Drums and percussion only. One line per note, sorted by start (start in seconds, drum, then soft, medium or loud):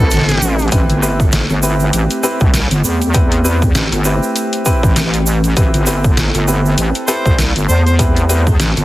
0.11 snare medium
0.11 closed hi-hat medium
0.11 shaker medium
0.17 snare medium
0.21 snare medium
0.29 snare medium
0.29 closed hi-hat medium
0.29 shaker soft
0.32 snare loud
0.37 snare loud
0.42 shaker medium
0.59 closed hi-hat soft
0.59 shaker soft
0.62 closed hi-hat soft
0.68 closed hi-hat soft
0.72 kick loud
0.72 closed hi-hat medium
0.72 shaker medium
0.89 closed hi-hat medium
0.89 shaker soft
1.03 shaker loud
1.20 kick loud
1.20 shaker soft
1.32 snare loud
1.32 closed hi-hat medium
1.32 shaker medium
1.50 cross-stick soft
1.50 shaker soft
1.63 shaker loud
1.80 shaker soft
1.93 closed hi-hat medium
1.93 shaker medium
2.10 closed hi-hat medium
2.10 shaker soft
2.24 shaker medium
2.40 kick loud
2.40 shaker soft
2.54 snare loud
2.54 closed hi-hat medium
2.54 shaker medium
2.71 closed hi-hat medium
2.71 shaker soft
2.84 shaker loud
3.01 closed hi-hat soft
3.01 shaker soft
3.14 kick loud
3.14 closed hi-hat medium
3.14 shaker medium
3.32 closed hi-hat medium
3.32 shaker soft
3.45 shaker medium
3.62 kick loud
3.62 shaker soft
3.75 snare loud
3.75 closed hi-hat medium
3.75 shaker medium
3.92 cross-stick soft
3.92 closed hi-hat medium
3.92 shaker soft
4.05 shaker medium
4.23 shaker soft
4.36 closed hi-hat medium
4.36 shaker medium
4.53 closed hi-hat medium
4.53 shaker soft
4.66 kick medium
4.66 shaker medium
4.83 kick loud
4.83 shaker soft
4.96 snare loud
4.96 closed hi-hat medium
4.96 shaker medium
5.14 closed hi-hat medium
5.14 shaker soft
5.27 shaker medium
5.44 closed hi-hat soft
5.44 shaker soft
5.57 kick loud
5.57 closed hi-hat medium
5.57 shaker medium
5.74 closed hi-hat medium
5.74 shaker soft
5.86 open hi-hat medium
5.86 shaker medium
6.04 kick loud
6.04 shaker soft
6.17 snare loud
6.17 closed hi-hat medium
6.17 shaker soft
6.34 cross-stick soft
6.34 closed hi-hat medium
6.34 shaker soft
6.48 shaker medium
6.65 shaker soft
6.78 closed hi-hat medium
6.78 shaker medium
6.95 closed hi-hat soft
6.95 shaker soft
7.08 open hi-hat medium
7.08 shaker loud
7.26 kick loud
7.26 shaker soft
7.38 snare loud
7.38 closed hi-hat medium
7.38 shaker medium
7.56 closed hi-hat medium
7.56 shaker soft
7.69 shaker loud
7.87 closed hi-hat soft
7.87 shaker soft
7.99 kick loud
7.99 closed hi-hat medium
7.99 shaker medium
8.16 closed hi-hat soft
8.16 shaker soft
8.29 open hi-hat medium
8.29 shaker medium
8.47 kick loud
8.47 shaker soft
8.60 snare loud
8.60 closed hi-hat medium
8.60 shaker medium
8.77 closed hi-hat medium
8.77 shaker soft